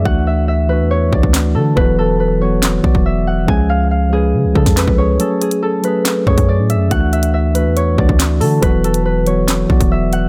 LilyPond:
<<
  \new Staff \with { instrumentName = "Harp" } { \time 4/4 \key d \lydian \tempo 4 = 140 fis''8 e''8 e''8 b'8 cis''8 d''4 a'8 | b'8 a'8 b'8 cis''4 d''8 e''8 fis''8 | gis''8 eis''8 eis''8 gis'4 a'8 b'8 cis''8 | a'8 gis'8 a'8 b'4 cis''8 d''8 e''8 |
fis''8 e''8 e''8 b'8 cis''8 d''4 a'8 | b'8 a'8 b'8 cis''4 d''8 e''8 fis''8 | }
  \new Staff \with { instrumentName = "Tine electric piano" } { \time 4/4 \key d \lydian <e a d' fis'>4. <e a d' fis'>4 <e a d' fis'>4 <e a d' fis'>8 | <e fis b fis'>4. <e fis b fis'>4 <e fis b fis'>4. | <eis gis cis' gis'>4. <eis gis cis' b'>4 <eis gis cis' gis'>4 <eis gis cis' gis'>8 | <fis a cis' gis'>4. <fis a cis' gis'>4 <fis a cis' gis'>4. |
<e a d' fis'>4. <e a d' fis'>4 <e a d' fis'>4 <e a d' fis'>8 | <e fis b fis'>4. <e fis b fis'>4 <e fis b fis'>4. | }
  \new Staff \with { instrumentName = "808-style bass" } { \clef bass \time 4/4 \key d \lydian d,4.~ d,16 e,8. d,16 d,8. d8 | e,,2~ e,,8 b,,16 e,,4~ e,,16 | cis,2 cis16 cis,16 cis16 eis,8 cis,8. | r2 r8 fis,16 fis,8 a,16. fis,16. |
d,4.~ d,16 e,8. d,16 d,8. d8 | e,,2~ e,,8 b,,16 e,,4~ e,,16 | }
  \new DrumStaff \with { instrumentName = "Drums" } \drummode { \time 4/4 bd4 r4 r8 bd16 bd16 <hc sn>4 | bd4 r4 <hc sn>8 bd16 bd16 r4 | bd4 r4 r8 bd16 <bd sn>16 <hc sn>16 bd8. | hh8 hh16 hh16 r8 hh8 <hc hh sn>8 bd16 <hh bd>16 r8 hh8 |
<hh bd>8 hh16 hh16 r8 hh8 hh8 bd16 bd16 <hc sn>8 hho8 | <hh bd>8 hh16 hh16 r8 hh8 <hc hh sn>8 bd16 <hh bd>16 r8 hh8 | }
>>